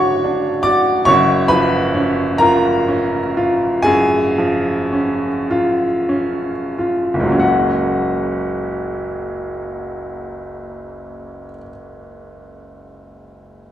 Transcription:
Already playing: D3 F#3 D4 F#4 C#5 D5 C#6 D6
0.24 D4
0.63 F#4 D5 D6
1.05 F#1 F#2 C#5 C#6
1.48 F3 B4 B5
1.94 C#4
2.38 F4 A#4 A#5
2.88 C#4
3.37 F4
3.82 F#2 G#4 G#5
4.38 F3
4.93 C#4
5.51 F4
6.09 C#4
6.78 F4
7.14 F#1
7.19 C#2
7.24 F#3
7.28 A#3 C#4
7.38 F#4 F#5

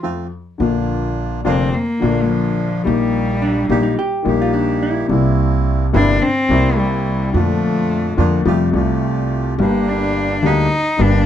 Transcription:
0.02 F2 F3 A3 C4 F4
0.58 A#1 A#2 D3 F3 A#3 D4 F4
1.44 F1 F2 D3 F3 A#3 C4 D4 F4
1.74 A#3
2.00 A#1 A#2 D3 F3 A#3 D4 F4
2.29 F3
2.83 A#1 A#2 D#3 G3 A#3 D#4 G4
3.42 D4
3.69 A#1 A#2 D#3 G3 A#3 D#4 G4
3.83 D#4
3.99 G4
4.23 A#1 A#2 D#3 G3 A#3 D#4
4.27 G4
4.42 F4
4.54 D4
4.83 E4
5.08 C2 C3 G3 A#3 C4 E4
5.12 E4
5.93 G1 G2 C3 G3 A#3 C4 D4 E4
6.22 C4
6.48 C2 C3 G3 A#3 C4 E4
6.53 E4
6.79 G3
7.32 F2 A#2 D3 F3 A3 D4 F4
7.37 F4
8.17 F2 D3 F3 A#3 D4 F4
8.45 F2 C3 F3 G3 A3 F4 G4
8.72 C2 C3 G3 A3 F4 G4
9.57 G1 G2 D3 G3 A#3 D4 G4
9.63 A#3
9.89 D4
10.42 D2 D3 G3 A#3 D4 G4
10.47 D#4
10.97 G1 G2 D3 G3 A#3 D4 G4
11.01 D4

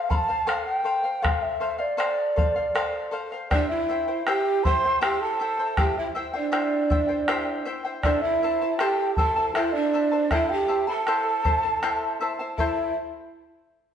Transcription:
Already playing: F5
0.10 A4 C5 F5 B5, bombo low
0.15 A5
0.29 C5 F5
0.47 A4 C5 F5, bombo rim
0.66 G5
0.84 A4 C5 F5
1.04 C5 F5
1.22 A4 C5 F5, bombo rim, bombo low
1.42 E5
1.60 A4 C5 F5, bombo rim
1.78 C5 D5 F5
1.97 A4 C5 F5, bombo rim
2.18 bombo rim
2.36 A4 C5 F5, bombo rim, bombo low
2.56 C5 F5
2.75 A4 C5 F5, bombo rim
3.11 A4 C5 F5
3.32 C5 F5, bombo rim
3.50 D4 E4 G4 C5 D5 E5 G5, bombo rim, bombo low
3.68 E4 E5
3.89 E4 C5 E5 G5
4.08 E4 C5 G5
4.26 E4 G4 C5 E5 G5, bombo rim
4.64 E4 C5 E5 G5 C6, bombo low
4.84 E4 C5 G5
5.01 E4 G4 C5 E5 G5, bombo rim
5.21 A4 A5
5.40 E4 C5 E5 G5
5.59 E4 C5 G5
5.77 E4 G4 C5 E5 G5, bombo rim, bombo low
5.97 E4 E5
6.15 E4 C5 E5 G5
6.33 D4 E4 C5 D5 G5
6.52 E4 G4 C5 E5 G5, bombo rim
6.90 E4 C5 E5 G5, bombo low
7.08 E4 C5 G5
7.28 E4 G4 C5 E5 G5, bombo rim
7.65 E4 C5 E5 G5
7.85 E4 C5 G5
8.03 D4 E4 A4 C5 D5 E5 A5, bombo rim, bombo low
8.21 E4 E5
8.43 E4 C5 E5 A5
8.62 E4 C5 A5
8.78 E4 G4 A4 C5 E5 G5 A5, bombo rim
9.15 E4 A4 C5 E5 A5, bombo low
9.20 A5
9.36 E4 C5 A5
9.54 E4 A4 C5 E5 A5, bombo rim
9.73 D4 D5
9.94 E4 C5 E5 A5
10.12 E4 C5 A5
10.31 E4 A4 C5 E5 A5, bombo rim, bombo low
10.50 G4 G5
10.68 E4 C5 E5 A5
10.87 E4 A4 C5 A5 B5
10.93 A5
11.07 E4 A4 C5 E5 A5, bombo rim
11.45 E4 C5 E5 A5, bombo rim, bombo low
11.63 E4 C5 A5
11.82 E4 A4 C5 E5 A5, bombo rim
12.01 bombo rim
12.21 E4 C5 E5 A5
12.39 E4 C5 A5
12.58 E4 A4 C5 E5 A5, bombo low

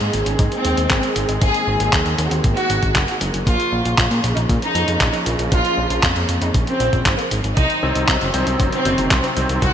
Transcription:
Already playing: D#3 G#3 A#3 C4 D#4 G#4
0.01 G#2, closed hi-hat
0.13 G#1, closed hi-hat
0.26 G#1 C#4, closed hi-hat
0.39 G#2, kick, closed hi-hat
0.52 C4, closed hi-hat
0.65 D#2, closed hi-hat
0.77 D#2, closed hi-hat
0.90 G#1, kick, clap, closed hi-hat
1.03 C4, closed hi-hat
1.16 G#1, closed hi-hat
1.29 G#1, closed hi-hat
1.42 G#1 G#4, kick, closed hi-hat
1.54 closed hi-hat
1.67 G#1
1.80 G#1, closed hi-hat
1.93 D#2 G#4, kick, clap, closed hi-hat
2.06 D#2, closed hi-hat
2.18 D#2, closed hi-hat
2.31 D#2 F#4, closed hi-hat
2.44 G#1, kick, closed hi-hat
2.57 F#4, closed hi-hat
2.70 G#1, closed hi-hat
2.83 G#1, kick, closed hi-hat
2.95 F#1, kick, clap, closed hi-hat
3.08 F#4, closed hi-hat
3.21 F#1, closed hi-hat
3.34 F#1, closed hi-hat
3.47 A#1 C#3 F3 F4, kick, closed hi-hat
3.60 closed hi-hat
3.72 A#1
3.85 A#1, closed hi-hat
3.98 A#1 F4, kick, clap, closed hi-hat
4.11 A#2, closed hi-hat
4.24 A#1, closed hi-hat
4.37 A#1 D#4, closed hi-hat
4.49 A#2, kick, closed hi-hat
4.62 D#4, closed hi-hat
4.75 F2, closed hi-hat
4.88 F2, closed hi-hat
5.01 A#1, kick, clap, closed hi-hat
5.14 D#4, closed hi-hat
5.26 A#1, closed hi-hat
5.39 A#1, closed hi-hat
5.52 A#1 F4, kick, closed hi-hat
5.65 closed hi-hat
5.77 A#1
5.90 A#1, closed hi-hat
6.03 F2 F4, kick, clap, closed hi-hat
6.16 F2, closed hi-hat
6.29 F2, closed hi-hat
6.42 F2 D#4, closed hi-hat
6.54 A#1, kick, closed hi-hat
6.67 C4, closed hi-hat
6.80 A#1, closed hi-hat
6.93 A#1, kick, closed hi-hat
7.06 G#1, kick, clap, closed hi-hat
7.18 A#3, closed hi-hat
7.31 G#1, closed hi-hat
7.44 G#1, closed hi-hat
7.57 C2 D#3 F#3 C4 D#4, kick, closed hi-hat
7.70 closed hi-hat
7.83 C2 C3 F#3 C4 D#4 C5
7.95 C2, closed hi-hat
8.08 C2 D#4, kick, clap, closed hi-hat
8.21 F#1, closed hi-hat
8.34 C2 C3 F#3 C4 D#4 C5, closed hi-hat
8.47 C2 C#4, closed hi-hat
8.60 F#1, kick, closed hi-hat
8.72 C4, closed hi-hat
8.85 F#1 C3 F#3 C4 D#4 C5, closed hi-hat
8.98 F#1, closed hi-hat
9.11 C2, kick, clap, closed hi-hat
9.24 C4, closed hi-hat
9.36 C2 C3 F#3 C4 D#4 C5, closed hi-hat
9.49 C2, closed hi-hat
9.62 C2 F#4, kick, closed hi-hat

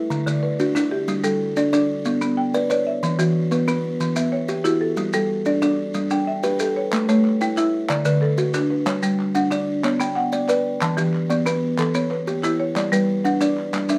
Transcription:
Already playing: E4 E5
0.10 D3, maracas
0.26 D3 D5, maracas
0.43 B4
0.60 D4 F#4, maracas
0.75 D4 E4 F#4, maracas
0.91 G4
1.08 G3, maracas
1.24 G3 A4, maracas
1.57 D4 D5, maracas
1.73 D4 D5, maracas
2.05 B3, maracas
2.21 B3, maracas
2.37 G5
2.54 B4 D5, maracas
2.70 B4 C#5 D5, maracas
2.87 E5
3.03 E3, maracas
3.19 E3 F#4, maracas
3.51 B3 B4, maracas
3.68 B3 B4, maracas
4.00 E3, maracas
4.16 B3 E5, maracas
4.32 C#5
4.48 G4, maracas
4.64 E4 F#4 G4, maracas
4.81 A4
4.97 G3, maracas
5.13 G3 A4, maracas
5.45 D4 D5, maracas
5.62 D4 D5, maracas
5.94 G3, maracas
6.10 D4 G5, maracas
6.27 E5
6.43 G4 B4, maracas
6.59 G4 A4 B4, maracas
6.76 C#5
6.92 A3, clap, maracas
7.09 A3 C#5, maracas
7.25 clap
7.41 E4 G5, maracas
7.57 E4 E5, clap, maracas
7.89 D3 D5, clap, maracas
8.05 D3 B4, maracas
8.22 A4, clap
8.38 F#4, maracas
8.54 D4 F#4, clap, maracas
8.70 B4
8.86 G3 C#5, clap, maracas
9.03 G3, maracas
9.19 clap
9.35 D4 F#5, maracas
9.51 D4 D5, clap, maracas
9.84 B3 C#5, clap, maracas
10.00 B3 G5, maracas
10.16 F#5, clap
10.32 D5, maracas
10.48 B4 D5, clap, maracas
10.81 E3 A5, clap, maracas
10.97 E3 G4, maracas
11.14 clap
11.30 B3 D5, maracas
11.46 B3 B4, clap, maracas
11.78 E3 A4, clap, maracas
11.95 B3 C#5, maracas
12.11 B4, clap
12.27 G4, maracas
12.43 E4 G4, clap, maracas
12.60 C#5
12.76 G3 D5, clap, maracas
12.92 G3 B4, maracas
13.24 D4 F#5, maracas
13.41 D4 D5, maracas
13.58 clap
13.73 G3, clap, maracas
13.89 D4 E5, clap, maracas

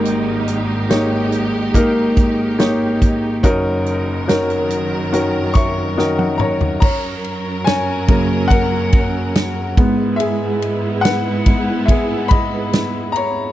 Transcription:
Already playing: G#1 G#2 G#3 A#3 D#4 F#4 G4 A#4 D#5
0.05 closed hi-hat
0.48 closed hi-hat
0.89 A#3 D#4 G4 C#5, snare, closed hi-hat
1.32 closed hi-hat
1.74 A#3 D#4 G4 A#4, kick, closed hi-hat
2.17 kick, closed hi-hat
2.58 A#3 D#4 G4 C#5, snare, closed hi-hat
3.02 kick, closed hi-hat
3.43 F#1 F#2 D#3 F#3 C#4 D#4 F#4 A#4, kick, closed hi-hat
3.86 closed hi-hat
4.27 C#4 D#4 F#4 A#4, snare, closed hi-hat
4.50 closed hi-hat
4.70 closed hi-hat
5.12 D#3 C#4 F#4 A#4, closed hi-hat
5.54 C#5 E5 C#6, kick, closed hi-hat
5.97 D#3 C#4 F#4 A#4 D#5, snare
6.18 F#5, high tom
6.39 C#5 A#5, mid tom
6.61 floor tom
6.80 F#2 F#3 C#4 A#4 C#5 A#5, kick, crash
7.24 ride
7.64 C#5 G#5, snare, ride
8.08 F#2 C#3 A#3, kick, ride
8.48 A#4 F#5, kick, ride
8.92 kick, ride
9.35 snare, ride
9.77 G#2 G#3 B3 E4, kick, ride
10.16 G#4 E5, ride
10.62 ride
11.01 F#5, snare, ride
11.05 B4
11.46 G#2 G#3 B3, kick, ride
11.86 G#4 E5, kick, ride
12.28 D#5 B5, kick, ride
12.73 snare, ride
13.12 A#5, ride
13.17 C#5

